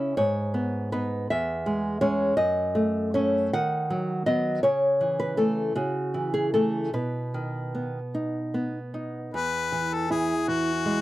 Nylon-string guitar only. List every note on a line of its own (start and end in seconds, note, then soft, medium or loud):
0.00 0.14 C#3 medium
0.00 0.13 C#4 soft
0.00 0.14 E4 medium
0.17 1.27 G#2 medium
0.17 0.89 C#5 medium
0.54 0.91 B3 medium
0.92 1.26 B3 soft
0.92 1.26 D#4 medium
0.92 1.28 B4 medium
1.30 2.34 E2 medium
1.30 1.99 E5 medium
1.66 2.00 G#3 soft
2.01 2.33 G#3 medium
2.01 2.34 C#4 medium
2.01 2.35 C#5 medium
2.37 3.49 F#2 medium
2.37 3.11 D#5 medium
2.75 3.14 A3 medium
3.14 3.50 A3 soft
3.14 3.50 C#4 medium
3.14 3.52 C#5 medium
3.53 4.60 D#3 medium
3.53 4.23 F#5 medium
3.90 4.25 F#3 medium
4.26 4.59 F#3 soft
4.26 4.60 B3 soft
4.26 4.61 D#5 medium
4.63 5.73 C#3 medium
4.63 5.17 C#5 medium
5.01 5.36 E3 soft
5.20 5.38 B4 medium
5.37 5.72 E3 soft
5.37 5.72 A3 soft
5.37 5.74 A4 medium
5.75 6.90 C#3 medium
5.75 6.31 F#4 medium
6.14 6.53 E3 soft
6.34 6.53 G#4 medium
6.54 6.90 E3 soft
6.54 6.90 A3 medium
6.54 6.92 A4 medium
6.94 9.29 B2 medium
6.94 8.90 B4 medium
7.34 7.98 D#3 soft
7.75 8.38 B3 soft
8.15 8.78 D#4 soft
8.54 9.18 B3 soft
8.94 9.33 D#4 soft
9.34 11.01 E2 medium
9.72 10.33 E3 medium
10.10 10.70 E4 medium
10.48 11.01 E3 soft
10.85 11.01 G#3 medium